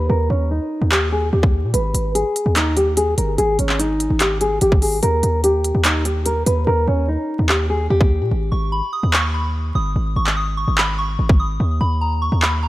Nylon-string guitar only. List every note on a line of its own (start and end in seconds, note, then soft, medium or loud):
0.10 0.28 A#4 medium
0.30 0.48 C#4 medium
0.51 0.89 D#4 medium
0.92 1.10 G4 medium
1.12 1.31 G#4 medium
1.33 1.71 G4 medium
1.74 2.12 B4 medium
2.15 2.54 G#4 medium
2.56 2.74 D#4 medium
2.77 2.95 G4 medium
2.97 3.15 G#4 medium
3.18 3.36 A#4 medium
3.38 3.57 G#4 loud
3.59 3.77 C#4 medium
3.79 4.18 D#4 medium
4.20 4.39 G4 medium
4.41 4.59 G#4 medium
4.62 4.80 G4 medium
4.82 5.00 G#4 medium
5.03 5.41 A#4 loud
5.44 5.82 G4 medium
5.85 6.03 D#4 medium
6.05 6.24 G4 medium
6.26 6.44 A#4 medium
6.46 6.65 B4 medium
6.67 6.85 A#4 medium
6.88 7.06 C#4 medium
7.08 7.47 D#4 medium
7.49 7.68 G4 medium
7.70 7.88 G#4 medium
7.90 8.29 G4 medium